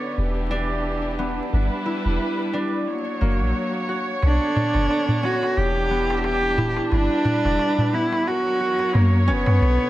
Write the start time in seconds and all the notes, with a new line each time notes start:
Already playing: D3 B3 D4 F#4 C#5
0.17 E1 E3 D4 G4
0.51 D4
1.19 B3
1.53 G1 G3 E4 B4
1.86 E4
2.06 E1
2.53 D4
2.88 F#3 A#3 C#5
3.21 F#1 A#3
3.40 A#1
3.89 F#4
4.22 B1 D3 B3 D4, darbuka tek
4.41 darbuka tek
4.56 D4, darbuka dum
4.74 F#1, darbuka tek
4.91 darbuka tek
5.08 darbuka tek, darbuka dum
5.23 C#4 F#4
5.43 darbuka tek
5.57 E1 E3 D4 G4, darbuka tek
5.77 darbuka tek
5.90 B3
6.10 darbuka tek
6.24 G4, darbuka tek
6.43 darbuka tek
6.58 E4, darbuka dum
6.77 darbuka tek
6.92 G1 G3 D4 E4 B4, darbuka tek
7.11 darbuka tek
7.25 D4, darbuka dum
7.45 E1, darbuka tek
7.59 darbuka tek
7.78 darbuka tek, darbuka dum
7.93 B3 E4
8.13 darbuka tek
8.27 F#3 F#4 A#4 C#5, darbuka tek
8.46 darbuka tek
8.60 F#4
8.79 darbuka tek
8.95 F#2 A#3, darbuka tek
9.13 darbuka tek
9.27 F#1 B3 C#4
9.46 F#2, darbuka tek
9.62 B1 B2 D3, darbuka tek
9.81 darbuka tek